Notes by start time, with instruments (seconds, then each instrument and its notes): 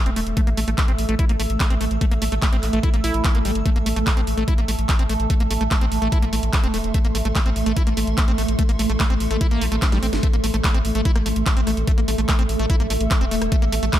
Already playing: synth drone A3, ambient pad A3 A4 E5 E6
0.06 analog synth bass E1, acid bass C4, closed hi-hat
0.16 analog synth bass E1, acid bass A3, open hi-hat
0.27 analog synth bass E1, closed hi-hat
0.37 acid bass A3, kick, closed hi-hat
0.47 analog synth bass A1, acid bass A#3, closed hi-hat
0.57 analog synth bass A1, acid bass A3, open hi-hat
0.68 analog synth bass A1, acid bass A3, closed hi-hat
0.78 acid bass A3, kick, clap
0.88 analog synth bass A1, acid bass C4, closed hi-hat
0.98 analog synth bass A1, open hi-hat
1.09 analog synth bass A1, acid bass A3, closed hi-hat
1.19 acid bass E4, kick, closed hi-hat
1.29 analog synth bass A1, acid bass A#3, closed hi-hat
1.40 analog synth bass A1, acid bass A3, open hi-hat
1.50 analog synth bass A1, closed hi-hat
1.60 acid bass C4, kick, clap, closed hi-hat
1.70 analog synth bass A1, acid bass C4, closed hi-hat
1.81 analog synth bass A1, acid bass A3, open hi-hat
1.91 analog synth bass A1, closed hi-hat
2.01 acid bass A3, kick, closed hi-hat
2.11 analog synth bass A1, acid bass A#3, closed hi-hat
2.22 analog synth bass A1, acid bass A3, open hi-hat
2.32 analog synth bass A1, acid bass A3, closed hi-hat
2.42 acid bass A3, kick, clap
2.53 analog synth bass A1, acid bass C4, closed hi-hat
2.63 analog synth bass A1, clap, open hi-hat
2.73 analog synth bass A1, acid bass A3, closed hi-hat
2.83 acid bass E4, kick, closed hi-hat
2.94 analog synth bass A1, acid bass A#3, closed hi-hat
3.04 analog synth bass A#1, acid bass E4, open hi-hat
3.14 analog synth bass A1, closed hi-hat
3.25 acid bass G3, kick, clap, closed hi-hat
3.35 analog synth bass A1, acid bass A#3, closed hi-hat
3.45 analog synth bass A1, acid bass G3, open hi-hat
3.55 analog synth bass G1, closed hi-hat
3.66 acid bass A3, kick, closed hi-hat
3.76 analog synth bass A1, acid bass A#3, closed hi-hat
3.86 analog synth bass A1, acid bass A3, open hi-hat
3.96 analog synth bass A1, acid bass A3, closed hi-hat
4.07 acid bass A3, kick, clap
4.17 analog synth bass A1, acid bass C4, closed hi-hat
4.27 analog synth bass A1, open hi-hat
4.37 analog synth bass A1, acid bass A3, closed hi-hat
4.48 acid bass E4, kick, closed hi-hat
4.58 analog synth bass A1, acid bass A#3, closed hi-hat
4.68 analog synth bass A1, acid bass A3, open hi-hat
4.79 analog synth bass A1, closed hi-hat
4.89 acid bass C4, kick, clap, closed hi-hat
4.99 analog synth bass A1, acid bass C4, closed hi-hat
5.09 analog synth bass A1, acid bass A3, open hi-hat
5.14 ambient pad C6
5.20 analog synth bass A1, closed hi-hat
5.30 acid bass A3, kick, closed hi-hat
5.40 analog synth bass A1, acid bass A#3, closed hi-hat
5.51 analog synth bass A1, acid bass A3, open hi-hat
5.61 analog synth bass A1, acid bass A3, closed hi-hat
5.71 acid bass A3, kick, clap
5.81 analog synth bass A1, acid bass C4, closed hi-hat
5.92 analog synth bass A1, open hi-hat
6.02 analog synth bass A1, acid bass A3, closed hi-hat
6.12 acid bass E4, kick, closed hi-hat
6.22 analog synth bass A#1, acid bass A#3, closed hi-hat
6.33 analog synth bass A1, acid bass A3, open hi-hat
6.43 analog synth bass A1, closed hi-hat
6.53 acid bass C4, kick, clap, closed hi-hat
6.64 analog synth bass E1, acid bass C4, closed hi-hat
6.74 analog synth bass E1, acid bass A3, open hi-hat
6.84 analog synth bass E1, closed hi-hat
6.94 acid bass A3, kick, closed hi-hat
7.05 analog synth bass A1, acid bass A#3, closed hi-hat
7.15 analog synth bass A1, acid bass A3, open hi-hat
7.25 analog synth bass A1, acid bass A3, closed hi-hat
7.35 acid bass A3, kick, clap
7.46 analog synth bass A1, acid bass C4, closed hi-hat
7.56 analog synth bass A1, open hi-hat
7.66 analog synth bass A1, acid bass A3, closed hi-hat
7.77 acid bass E4, kick, closed hi-hat
7.87 analog synth bass A1, acid bass A#3, closed hi-hat
7.97 analog synth bass A1, acid bass A3, open hi-hat
8.07 analog synth bass A1, closed hi-hat
8.18 acid bass C4, kick, clap, closed hi-hat
8.28 analog synth bass A1, acid bass C4, closed hi-hat
8.38 analog synth bass A1, acid bass A3, open hi-hat
8.48 analog synth bass A1, closed hi-hat
8.59 acid bass A3, kick, closed hi-hat
8.69 analog synth bass A1, acid bass A#3, closed hi-hat
8.79 analog synth bass A1, acid bass A3, open hi-hat
8.90 analog synth bass A1, acid bass A3, closed hi-hat
9.00 acid bass A3, kick, clap, closed hi-hat
9.10 analog synth bass A1, acid bass C4, closed hi-hat
9.20 analog synth bass A1, open hi-hat
9.31 analog synth bass A1, acid bass A3, closed hi-hat
9.41 acid bass E4, kick, closed hi-hat
9.51 analog synth bass A1, acid bass A#3, closed hi-hat
9.61 analog synth bass A#1, acid bass A3, open hi-hat
9.72 analog synth bass A1, acid bass A3, closed hi-hat
9.82 acid bass C4, kick, snare, clap, closed hi-hat
9.92 analog synth bass A1, acid bass G3, snare, closed hi-hat
10.03 analog synth bass A1, acid bass C4, open hi-hat
10.13 analog synth bass G1, snare, closed hi-hat
10.23 acid bass A3, synth drone A3, kick, closed hi-hat
10.33 analog synth bass A1, acid bass A#3, closed hi-hat
10.44 analog synth bass A1, acid bass A3, open hi-hat
10.54 analog synth bass A1, acid bass A3, cross-stick, closed hi-hat
10.64 acid bass A3, kick, clap
10.74 analog synth bass A1, acid bass C4, closed hi-hat
10.85 analog synth bass A1, open hi-hat
10.95 analog synth bass A1, acid bass A3, closed hi-hat
11.05 acid bass E4, kick, closed hi-hat
11.16 analog synth bass A1, acid bass A#3, cross-stick, closed hi-hat
11.26 analog synth bass A1, acid bass A3, open hi-hat
11.36 analog synth bass A1, closed hi-hat
11.46 acid bass C4, kick, clap, closed hi-hat
11.57 analog synth bass A1, acid bass C4, closed hi-hat
11.67 analog synth bass A1, acid bass A3, cross-stick, open hi-hat
11.71 ambient pad E6
11.77 analog synth bass A1, closed hi-hat
11.87 acid bass A3, kick, closed hi-hat
11.98 analog synth bass A1, acid bass A#3, closed hi-hat
12.08 analog synth bass A1, acid bass A3, open hi-hat
12.18 analog synth bass A1, acid bass A3, closed hi-hat
12.29 acid bass A3, kick, cross-stick, clap
12.39 analog synth bass A1, acid bass C4, closed hi-hat
12.49 analog synth bass A1, open hi-hat
12.59 analog synth bass A1, acid bass A3, closed hi-hat
12.70 acid bass E4, kick, closed hi-hat
12.80 analog synth bass A#1, acid bass A#3, cross-stick, closed hi-hat
12.90 analog synth bass A1, acid bass A3, open hi-hat
13.00 analog synth bass A1, closed hi-hat
13.11 acid bass C4, kick, clap, closed hi-hat
13.21 analog synth bass E1, acid bass C4, closed hi-hat
13.31 analog synth bass E1, acid bass A3, open hi-hat
13.42 analog synth bass E1, cross-stick, closed hi-hat
13.52 acid bass A3, kick, closed hi-hat
13.62 analog synth bass A1, acid bass A#3, closed hi-hat
13.72 analog synth bass A1, acid bass A3, open hi-hat
13.83 analog synth bass A1, acid bass A3, closed hi-hat
13.93 acid bass A3, kick, cross-stick, clap